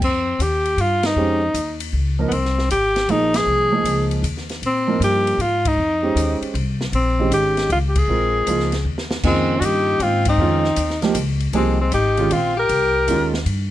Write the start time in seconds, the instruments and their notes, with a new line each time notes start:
0.02 upright bass F2, alto saxophone C4, kick, crash
0.39 upright bass D#2, alto saxophone G4, hi-hat pedal, ride
0.65 ride
0.77 upright bass G2, alto saxophone F4, ride
1.03 alto saxophone D#4, snare, ride
1.16 upright bass F2, grand piano G#3 C#4 G4 C5
1.54 upright bass D#2, hi-hat pedal, ride
1.80 ride
1.93 upright bass C#2
2.19 grand piano F3 A#3 D#4 A#4
2.28 upright bass C2, alto saxophone B3, ride
2.33 alto saxophone C4
2.45 snare
2.58 snare
2.69 upright bass G#1, alto saxophone G4, hi-hat pedal, ride
2.96 snare, ride
3.08 upright bass A#1, grand piano F3 A#3 D#4 G#4, alto saxophone D#4, ride
3.34 alto saxophone G#4, snare, ride
3.46 upright bass C2
3.72 grand piano F3 A#3 D#4 G#4
3.84 upright bass C#2, hi-hat pedal, ride
4.11 ride
4.23 upright bass D#2, hi-hat pedal, ride
4.37 snare
4.49 snare, ride
4.62 upright bass A#2, ride
4.66 alto saxophone C4
4.88 grand piano F3 A#3 D#4 A#4
5.00 upright bass G2, alto saxophone G4, hi-hat pedal, ride
5.27 ride
5.38 upright bass G#2, alto saxophone F4, ride
5.65 alto saxophone D#4, kick, ride
5.77 upright bass F2
6.02 grand piano G#3 C#4 G4 C5
6.15 upright bass D#2, hi-hat pedal, ride
6.41 muted upright bass stroke, ride
6.54 upright bass C2, ride
6.81 snare
6.92 upright bass A#1, alto saxophone C4, ride
7.20 grand piano D#3 G#3 C#4 G4
7.31 upright bass G#1, alto saxophone G4, hi-hat pedal, ride
7.57 snare, ride
7.70 upright bass C#2, alto saxophone F4, ride
7.89 alto saxophone G4
7.96 alto saxophone G#4, kick, ride
8.08 upright bass A#1, grand piano G#3 C4 F4 A#4
8.47 upright bass C#2, grand piano F3 A#3 D#4 F4, hi-hat pedal, ride
8.59 snare
8.72 snare, ride
8.85 upright bass D#2
8.98 snare
9.11 snare
9.23 upright bass F2, grand piano C#3 D#3 A#3 F4, tenor saxophone G#3, alto saxophone C4, kick, crash
9.57 upright bass G2, tenor saxophone C#4, alto saxophone F#4
9.62 tenor saxophone D#4, alto saxophone G4, hi-hat pedal, ride
10.00 upright bass G#2, tenor saxophone C4, alto saxophone F4, ride
10.25 tenor saxophone C4, kick, ride
10.29 alto saxophone D#4
10.38 upright bass F2, grand piano D#3 G#3 C#4 F4
10.64 snare
10.76 upright bass D#2, hi-hat pedal, ride
10.90 snare
11.02 grand piano F3 A#3 D#4 G4, snare, ride
11.15 upright bass C#2, hi-hat pedal, ride
11.40 ride
11.53 upright bass C2, grand piano F3 A#3 D#4 G4, tenor saxophone G#3, alto saxophone C4, ride
11.80 tenor saxophone G#3, alto saxophone C4
11.92 upright bass G#1, tenor saxophone D#4, alto saxophone G4, hi-hat pedal, ride
12.17 grand piano D#3 G#3 C#4 F4, ride
12.31 upright bass A#1, tenor saxophone C4, alto saxophone F4, ride
12.57 tenor saxophone G4, alto saxophone A#4
12.69 upright bass C2, ride
13.07 upright bass D#2, grand piano D#3 G#3 C#4 F4, hi-hat pedal, ride
13.34 snare
13.46 upright bass G2, ride